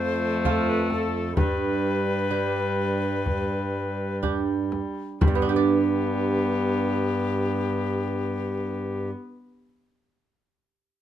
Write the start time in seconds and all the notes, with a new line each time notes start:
Already playing: F2 A3 C5
0.45 F4 A4, frame drum
0.69 B4
0.90 A4, frame drum
1.37 G2 G3 B4, frame drum
2.31 D4 G4
3.26 frame drum
4.23 D4 G4, frame drum
4.72 frame drum
5.21 G2 B3 G4, frame drum
5.28 G3
5.35 B3
5.42 D4
5.49 G4
5.56 D5